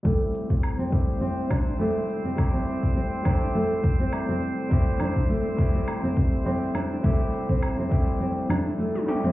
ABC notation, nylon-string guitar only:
X:1
M:4/4
L:1/16
Q:"Swing 16ths" 1/4=103
K:Am
V:1 name="Nylon-string guitar"
A, z2 C2 C3 C2 D z A, z2 C- | C C3 C2 D z A, z2 C2 C3 | C2 D z A, z2 C2 C3 C2 D z | A, z2 C2 C3 C2 D z A, z2 C |]